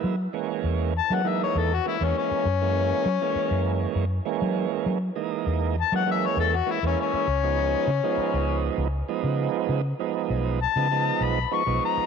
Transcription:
<<
  \new Staff \with { instrumentName = "Harmonica" } { \time 4/4 \key fis \mixolydian \tempo 4 = 99 r4. a''16 fis''16 e''16 cis''16 a'16 fis'16 e'16 cis'16 cis'8~ | cis'2~ cis'8 r4. | r4. a''16 fis''16 e''16 cis''16 a'16 fis'16 e'16 cis'16 cis'8~ | cis'2~ cis'8 r4. |
r4. a''4 b''8 cis'''8 ais''8 | }
  \new Staff \with { instrumentName = "Tonewheel organ" } { \time 4/4 \key fis \mixolydian <e gis ais e'>16 r16 <e gis ais cis'>4 r16 <e gis ais cis'>16 <e gis ais dis'>8. r16 <e gis ais cis'>16 <e gis ais cis'>8. | r16 <e gis ais cis'>8. r16 <e gis ais cis'>4. r16 <e gis ais cis'>4~ | <e gis ais cis'>16 r16 <e gis ais dis'>4 r16 <e gis ais cis'>16 <e gis ais cis'>8. r16 <e gis ais cis'>16 <e gis ais e'>8. | r16 <eis gis b dis'>8. r16 <eis gis b dis'>4. r16 <eis gis b dis'>4~ |
<eis gis b dis'>16 r16 <eis gis b dis'>4 r16 <eis gis b dis'>16 <eis gis b dis'>8. r16 <eis gis b dis'>16 <eis gis b dis'>8. | }
  \new Staff \with { instrumentName = "Fingered electric bass" } { \clef bass \time 4/4 \key fis \mixolydian fis8 r8 e,8. fis8. e,8 r16 e,16 r8 | fis,4 fis16 r8 fis,8. fis,8 r16 fis8 r16 | fis8 r8 e,8. fis8. e,8 r16 e,16 r8 | cis,4 cis16 r8 cis,8. cis,8 r16 cis8 r16 |
cis8 r8 b,,8. cis8. b,,8 r16 b,,16 r8 | }
>>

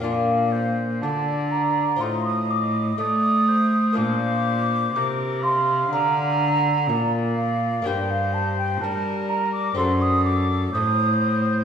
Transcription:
<<
  \new Staff \with { instrumentName = "Flute" } { \time 4/4 \key bes \major \tempo 4 = 62 f''4 a''8 bes''8 c'''16 ees'''16 d'''8 ees'''4 | d'''4. c'''8 bes''4. f''8 | g''16 f''16 a''16 g''16 a''8 bes''16 d'''16 c'''16 ees'''16 d'''8 ees'''8. r16 | }
  \new Staff \with { instrumentName = "Oboe" } { \time 4/4 \key bes \major d''8 c''8 d''4 ees''4 d''8 c''8~ | c''4 bes'8 f''4 r8 d''4 | c''4 bes'4 a'4 c''4 | }
  \new Staff \with { instrumentName = "Lute" } { \time 4/4 \key bes \major <bes d' f'>2 <c' f'>2 | <bes d' f'>1 | <bes d' g'>2 <c' d' a'>2 | }
  \new Staff \with { instrumentName = "Lute" } { \clef bass \time 4/4 \key bes \major bes,4 d4 a,4 a4 | bes,4 c4 d4 bes,4 | g,4 g4 fis,4 a,4 | }
  \new Staff \with { instrumentName = "Cello" } { \clef bass \time 4/4 \key bes \major bes,4 d4 a,4 a4 | bes,4 c4 d4 bes,4 | g,4 g4 fis,4 a,4 | }
>>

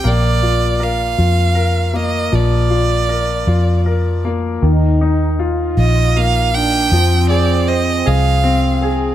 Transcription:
<<
  \new Staff \with { instrumentName = "Violin" } { \time 6/8 \key bes \mixolydian \tempo 4. = 52 d''4 f''4. ees''8 | d''2~ d''8 r8 | r4. ees''8 f''8 g''8~ | g''8 d''8 ees''8 f''4 r8 | }
  \new Staff \with { instrumentName = "Grand piano" } { \time 6/8 \key bes \mixolydian bes8 f'8 bes'8 f'8 bes'8 bes8 | f8 f'8 bes'8 f'8 bes'8 bes8 | ees8 ees'8 f'4 bes4 | f8 aes'8 c''8 aes'8 c'8 aes'8 | }
  \new Staff \with { instrumentName = "French horn section" } { \time 6/8 \key bes \mixolydian r2. | r2. | ees'4 f'4. d'8 | c'2 r8 aes'8 | }
  \new Staff \with { instrumentName = "Fingered electric bass" } { \clef bass \time 6/8 \key bes \mixolydian bes,,4. f,4. | bes,,4. f,4. | ees,4. bes,,4. | f,4. c,4. | }
>>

